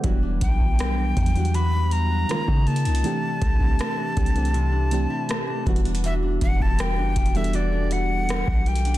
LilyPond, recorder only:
\new Staff \with { instrumentName = "Recorder" } { \time 4/4 \key e \minor \tempo 4 = 80 r8 g''4. b''8 ais''4 a''8~ | a''2.~ a''8 r8 | e''8 fis''16 a''16 g''8. e''16 d''8 fis''4 g''8 | }